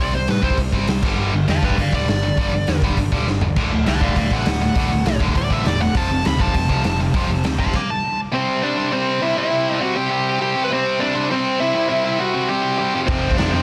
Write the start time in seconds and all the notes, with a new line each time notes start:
Already playing: C3 G3
0.00 C4 D5
0.13 C2 C3 G3 C5
0.27 A2 C3 G3 B4, snare, open hi-hat
0.42 C2 C3 G3 C4 C5, kick
0.50 kick
0.57 C2 C3 G3, kick, open hi-hat
0.72 G1 C3 G3 C4, kick
0.87 C2 C3 G3, snare, open hi-hat
1.03 G1 G2 D3 G3, kick, crash
1.18 G1 G2 D3 G3
1.33 G1 G2 D3
1.48 E2 G2 D3 F5 A5, snare, open hi-hat
1.62 G1 G2 D3 G3 B4 G5, kick
1.70 kick
1.78 G1 G2 D3 D5 F5, kick, open hi-hat
1.92 D1 G2 D3 G3 D5, kick
2.07 G1 G2 D3, snare, open hi-hat
2.23 G2 D3
2.37 G1 G2 D3 G3, kick, open hi-hat
2.53 G1 G2 D3
2.67 E2 G2 D3, snare, open hi-hat
2.82 G1 G2 D3 G3, kick
2.89 kick
2.97 G1 G2 D3, kick, open hi-hat
3.12 D1 G2 D3 G3, kick
3.27 G1 G2 D3, snare
3.41 G2 D3, floor tom
3.56 D1 D2 A2 D3, kick, crash
3.71 D1 D2 A2
3.86 C2 D2 A2 D3 F#5 A5, snare, open hi-hat
4.00 D1 D2 A2 D3 D5 F5, kick
4.08 kick
4.16 D1 D2 A2 D3 D5 F5, kick, open hi-hat
4.31 A1 D2 A2 D3 F#5, kick
4.46 D1 D2 A2 D3, snare, open hi-hat
4.60 D2 A2 D3
4.76 D1 D2 A2 D3, kick, open hi-hat
4.90 D1 D2 A2
5.05 C2 D2 A2 D3, snare, open hi-hat
5.20 D1 D2 A2 D3, kick
5.28 kick
5.35 D1 D2 A2 D3 D5, kick, open hi-hat
5.50 A1 D2 A2 D3 E5, kick
5.65 E1 D2 A2 D3 D5, snare, open hi-hat
5.80 D2 A2 D3 F#5
5.95 F1 F2 C3 F3 A5, kick, open hi-hat
6.10 F1 F2 C3
6.25 D2 F2 C3 F3 B5, snare, open hi-hat
6.39 F1 F2 C3 F3 A5, kick
6.47 kick
6.54 F1 F2 C3 F3, kick, open hi-hat
6.69 C2 F2 C3 F3, kick
6.84 F1 F2 C3 F3, snare, open hi-hat
6.99 F2 C3 F3
7.14 F1 F2 C3 F3, kick, open hi-hat
7.29 F1 F2 C3
7.44 D2 F2 C3 F3, snare, open hi-hat
7.59 F1 F2 C3 F3 A5 C6, kick
7.66 kick
7.73 F5 D6, kick, crash
7.90 A5
8.32 C3 G3 C4 C5
8.63 C3 G3 C4 D4 D5
8.77 C3 G3 C4
8.91 C3 G3 C4 C5
9.20 C3 G3 C4 E4 E5
9.35 C3 G3 C4 E4 E5
9.50 C3 G3 C4
9.80 C3 G3 C4 F#4 F#5
9.95 C3 G3 C4 G4 G5
10.10 C3 G3 C4
10.39 C3 G3 C4 G4 G5
10.55 C3 G3 C4
10.64 B4
10.70 C3 G3 C4 C5
10.99 C3 G3 C4 D4 D5
11.15 C3 G3 C4
11.30 C3 G3 C4 C5
11.59 C3 G3 C4 E4 E5
11.75 C3 G3 C4
11.89 C3 G3 C4 E4 E5
12.04 E4 E5
12.19 C3 G3 C4 F#4 F#5
12.34 C3 G3 C4
12.49 C3 G3 C4 G4 G5
12.62 G4 G5
12.78 C3 G3 C4 G4 G5
12.94 F2 C3 F3
13.07 F1 F2 C3 F3 C4 C5, kick, crash
13.31 kick
13.37 F1 F2 C3 F3 D4 D5, snare, crash
13.51 F1 F2 C3 C4 C5
13.55 F3